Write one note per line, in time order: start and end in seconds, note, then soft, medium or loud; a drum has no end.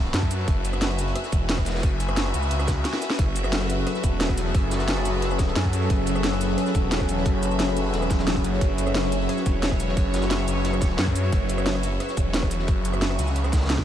0.00 0.12 F#1 loud
0.00 13.84 F#4 medium
0.00 13.84 B4 medium
0.00 13.84 E5 medium
0.00 0.95 A5 medium
0.05 snare soft
0.14 0.46 F#2 loud
0.14 snare loud
0.14 closed hi-hat medium
0.22 kick medium
0.31 closed hi-hat medium
0.31 shaker medium
0.39 closed hi-hat soft
0.48 0.63 F#1 loud
0.48 kick loud
0.48 closed hi-hat medium
0.65 1.14 F#1 loud
0.65 closed hi-hat medium
0.65 closed hi-hat loud
0.65 shaker medium
0.73 cross-stick medium
0.73 shaker soft
0.82 snare loud
0.82 closed hi-hat medium
0.90 3.66 G#5 medium
0.90 cross-stick soft
0.99 closed hi-hat medium
0.99 shaker medium
1.07 closed hi-hat soft
1.16 cross-stick medium
1.16 closed hi-hat medium
1.24 snare medium
1.24 shaker soft
1.32 1.82 E1 loud
1.32 kick loud
1.32 closed hi-hat medium
1.32 closed hi-hat loud
1.32 shaker medium
1.49 snare loud
1.49 closed hi-hat medium
1.57 kick medium
1.57 cross-stick medium
1.57 closed hi-hat soft
1.65 snare medium
1.65 closed hi-hat medium
1.65 closed hi-hat loud
1.65 shaker medium
1.70 snare medium
1.70 closed hi-hat medium
1.75 snare medium
1.75 closed hi-hat medium
1.78 snare medium
1.78 closed hi-hat medium
1.83 2.33 F#1 medium
1.83 kick loud
1.83 closed hi-hat medium
2.00 closed hi-hat loud
2.00 closed hi-hat medium
2.00 shaker medium
2.09 cross-stick medium
2.09 shaker soft
2.17 snare loud
2.17 closed hi-hat medium
2.26 cross-stick soft
2.34 2.50 C#2 loud
2.34 closed hi-hat loud
2.34 open hi-hat medium
2.34 shaker medium
2.43 shaker soft
2.51 2.84 C#2 loud
2.51 closed hi-hat loud
2.51 closed hi-hat medium
2.59 cross-stick soft
2.59 snare soft
2.59 shaker soft
2.68 kick loud
2.68 snare loud
2.68 snare soft
2.68 closed hi-hat loud
2.68 closed hi-hat medium
2.68 shaker medium
2.84 snare medium
2.84 closed hi-hat medium
2.84 open hi-hat medium
2.93 snare loud
2.93 snare medium
2.93 closed hi-hat medium
3.02 snare loud
3.02 closed hi-hat medium
3.02 closed hi-hat loud
3.02 shaker medium
3.10 snare medium
3.10 open hi-hat medium
3.19 3.34 F#1 loud
3.19 13.84 F#3 medium
3.19 13.84 C#4 medium
3.19 13.84 G#4 medium
3.19 8.59 A4 medium
3.19 kick loud
3.19 closed hi-hat medium
3.36 3.85 F#1 loud
3.36 closed hi-hat loud
3.36 closed hi-hat medium
3.36 shaker medium
3.44 cross-stick medium
3.44 shaker soft
3.53 snare loud
3.53 closed hi-hat medium
3.61 cross-stick soft
3.70 closed hi-hat medium
3.70 closed hi-hat loud
3.70 shaker medium
3.78 closed hi-hat soft
3.87 cross-stick medium
3.87 closed hi-hat medium
3.95 snare medium
3.95 shaker soft
4.04 4.53 E1 loud
4.04 kick loud
4.04 closed hi-hat medium
4.04 closed hi-hat loud
4.04 shaker medium
4.20 snare loud
4.20 closed hi-hat medium
4.29 kick medium
4.29 cross-stick medium
4.29 closed hi-hat soft
4.38 closed hi-hat medium
4.38 shaker medium
4.46 snare medium
4.55 5.04 F#1 loud
4.55 kick loud
4.55 closed hi-hat medium
4.71 snare loud
4.71 closed hi-hat medium
4.71 shaker medium
4.79 snare loud
4.79 closed hi-hat medium
4.79 shaker soft
4.88 snare loud
4.88 closed hi-hat medium
4.97 cross-stick soft
5.05 5.55 F#1 medium
5.05 closed hi-hat loud
5.05 open hi-hat medium
5.05 shaker medium
5.22 snare loud
5.22 closed hi-hat medium
5.31 cross-stick medium
5.31 shaker soft
5.39 kick loud
5.39 snare soft
5.39 closed hi-hat medium
5.39 closed hi-hat loud
5.39 shaker medium
5.47 snare soft
5.56 5.89 F#2 loud
5.56 snare loud
5.56 closed hi-hat medium
5.65 kick medium
5.73 closed hi-hat loud
5.73 closed hi-hat medium
5.73 shaker medium
5.82 closed hi-hat soft
5.90 6.06 F#1 loud
5.90 kick loud
5.90 closed hi-hat medium
6.06 6.57 F#1 loud
6.06 closed hi-hat medium
6.06 shaker medium
6.16 cross-stick medium
6.16 shaker soft
6.24 snare loud
6.24 closed hi-hat medium
6.32 9.09 B5 medium
6.32 cross-stick soft
6.41 closed hi-hat medium
6.41 shaker medium
6.49 closed hi-hat soft
6.58 cross-stick medium
6.58 closed hi-hat medium
6.66 snare medium
6.66 shaker soft
6.74 7.24 E1 medium
6.74 kick loud
6.74 closed hi-hat medium
6.74 shaker medium
6.92 snare loud
6.92 closed hi-hat medium
6.92 closed hi-hat loud
7.00 kick medium
7.00 cross-stick medium
7.00 closed hi-hat soft
7.09 closed hi-hat medium
7.09 shaker medium
7.17 snare soft
7.25 7.75 F#1 loud
7.25 kick loud
7.25 closed hi-hat medium
7.43 closed hi-hat medium
7.43 shaker medium
7.51 shaker soft
7.60 snare loud
7.60 closed hi-hat medium
7.68 cross-stick soft
7.77 7.92 F#1 medium
7.77 closed hi-hat medium
7.77 open hi-hat medium
7.77 shaker medium
7.93 8.43 E1 loud
7.93 snare loud
7.93 closed hi-hat medium
8.02 cross-stick soft
8.02 snare soft
8.02 shaker soft
8.10 kick loud
8.10 snare soft
8.10 closed hi-hat medium
8.10 shaker medium
8.19 snare loud
8.19 closed hi-hat medium
8.27 snare loud
8.27 closed hi-hat medium
8.36 kick medium
8.36 closed hi-hat medium
8.44 8.60 F#1 loud
8.44 closed hi-hat medium
8.44 shaker medium
8.53 snare soft
8.61 8.77 F#1 loud
8.61 13.84 C#5 loud
8.61 kick loud
8.61 closed hi-hat medium
8.78 9.28 F#1 medium
8.78 closed hi-hat medium
8.78 shaker medium
8.87 cross-stick medium
8.87 shaker soft
8.95 snare loud
8.95 closed hi-hat medium
9.04 cross-stick soft
9.12 closed hi-hat medium
9.12 shaker medium
9.21 closed hi-hat soft
9.29 cross-stick medium
9.29 closed hi-hat medium
9.29 closed hi-hat loud
9.37 snare medium
9.37 shaker soft
9.46 9.96 E1 loud
9.46 kick loud
9.46 closed hi-hat medium
9.46 shaker medium
9.63 snare loud
9.63 closed hi-hat medium
9.71 kick medium
9.71 cross-stick medium
9.80 closed hi-hat medium
9.80 shaker medium
9.89 snare medium
9.97 10.46 F#1 loud
9.97 kick loud
9.97 closed hi-hat medium
10.14 snare medium
10.14 closed hi-hat medium
10.14 shaker medium
10.22 snare loud
10.22 closed hi-hat medium
10.22 shaker soft
10.30 snare loud
10.30 closed hi-hat medium
10.39 cross-stick soft
10.48 10.97 F#1 medium
10.48 closed hi-hat medium
10.48 open hi-hat medium
10.48 shaker medium
10.65 snare loud
10.65 closed hi-hat medium
10.73 cross-stick soft
10.73 shaker soft
10.81 kick loud
10.81 snare soft
10.81 closed hi-hat medium
10.81 shaker medium
10.90 snare soft
10.97 11.31 F#2 loud
10.97 snare loud
10.97 closed hi-hat medium
11.07 kick medium
11.15 closed hi-hat medium
11.15 shaker medium
11.24 closed hi-hat soft
11.32 11.48 F#1 loud
11.32 kick loud
11.32 closed hi-hat medium
11.49 11.99 F#1 medium
11.49 closed hi-hat medium
11.49 closed hi-hat loud
11.49 shaker medium
11.58 cross-stick medium
11.58 shaker soft
11.66 snare loud
11.66 closed hi-hat medium
11.75 13.84 C#6 medium
11.75 cross-stick soft
11.83 closed hi-hat loud
11.83 closed hi-hat medium
11.83 shaker medium
11.91 closed hi-hat soft
12.00 cross-stick medium
12.00 closed hi-hat medium
12.09 snare soft
12.09 shaker soft
12.17 12.67 E1 medium
12.17 kick loud
12.17 closed hi-hat medium
12.17 closed hi-hat loud
12.17 shaker medium
12.34 snare loud
12.34 closed hi-hat medium
12.43 kick medium
12.43 cross-stick medium
12.43 closed hi-hat soft
12.51 closed hi-hat medium
12.51 shaker medium
12.59 snare soft
12.68 13.18 F#1 loud
12.68 kick loud
12.68 closed hi-hat medium
12.85 closed hi-hat medium
12.85 closed hi-hat loud
12.85 shaker medium
12.94 cross-stick medium
12.94 shaker soft
13.01 snare loud
13.01 closed hi-hat medium
13.10 cross-stick soft
13.19 13.34 C#2 loud
13.19 closed hi-hat loud
13.19 open hi-hat medium
13.19 shaker medium
13.27 shaker soft
13.36 13.68 C#2 loud
13.36 closed hi-hat medium
13.44 cross-stick soft
13.44 snare soft
13.44 shaker soft
13.53 kick loud
13.53 snare soft
13.53 snare medium
13.53 closed hi-hat medium
13.53 shaker medium
13.56 snare medium
13.56 closed hi-hat medium
13.61 snare medium
13.61 closed hi-hat medium
13.65 snare medium
13.65 closed hi-hat medium
13.69 13.84 C#2 loud
13.69 snare loud
13.69 closed hi-hat medium
13.78 kick medium
13.78 snare medium